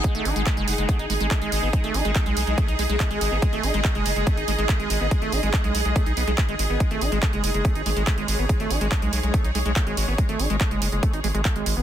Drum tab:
HH |xxoxxxoxxxoxxxo-|xxoxxxoxxxoxxxo-|xxoxxxoxxxoxxxo-|xxoxxxoxxxoxxxo-|
CP |----x-------x---|----x-------x---|----x-------x---|----x-------x---|
BD |o---o---o---o---|o---o---o---o---|o---o---o---o---|o---o---o---o---|

HH |xxoxxxoxxxoxxxo-|xxoxxxoxxxoxxxo-|xxoxxxoxxxoxxxo-|
CP |----x-------x---|----x-------x---|----x-------x---|
BD |o---o---o---o---|o---o---o---o---|o---o---o---o---|